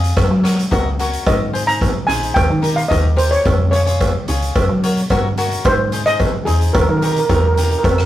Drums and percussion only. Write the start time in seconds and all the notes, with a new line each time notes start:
0.04 closed hi-hat
0.17 kick, cross-stick, closed hi-hat, cowbell
0.45 cross-stick, closed hi-hat
0.59 closed hi-hat
0.72 kick, closed hi-hat, cowbell
0.99 closed hi-hat
1.13 closed hi-hat
1.27 kick, closed hi-hat, cowbell
1.55 closed hi-hat
1.69 closed hi-hat
1.81 kick, closed hi-hat, cowbell
2.09 closed hi-hat
2.23 closed hi-hat
2.36 kick, closed hi-hat, cowbell
2.64 closed hi-hat
2.78 closed hi-hat
2.91 kick, closed hi-hat, cowbell
3.18 closed hi-hat
3.33 closed hi-hat
3.45 kick, closed hi-hat, cowbell
3.73 closed hi-hat
3.87 closed hi-hat
4.01 kick, closed hi-hat, cowbell
4.28 closed hi-hat
4.42 closed hi-hat
4.55 kick, closed hi-hat, cowbell
4.84 closed hi-hat
4.97 closed hi-hat
5.10 kick, closed hi-hat, cowbell
5.38 closed hi-hat
5.51 closed hi-hat
5.65 kick, closed hi-hat, cowbell
5.92 closed hi-hat
6.07 closed hi-hat
6.20 kick, closed hi-hat, cowbell
6.47 closed hi-hat
6.61 closed hi-hat
6.75 kick, closed hi-hat, cowbell
7.02 closed hi-hat
7.16 closed hi-hat
7.29 kick, closed hi-hat, cowbell
7.57 closed hi-hat
7.71 closed hi-hat
7.84 kick, closed hi-hat, cowbell
7.98 cross-stick